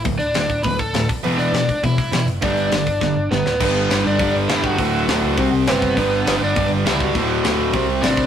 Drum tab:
CC |--------|--------|--------|x-------|
HH |oooooooo|oooooooo|oooo----|--o-o-o-|
SD |--o---o-|--o---o-|--o-o-oo|--o---o-|
BD |o--ooo-o|---ooo--|o--oo---|o---o--o|

CC |--------|--------|--------|
HH |o-o-o-o-|o-o-o-o-|o-o-o-o-|
SD |--o---o-|--o---o-|--o---o-|
BD |o---o--o|o---o--o|o---o--o|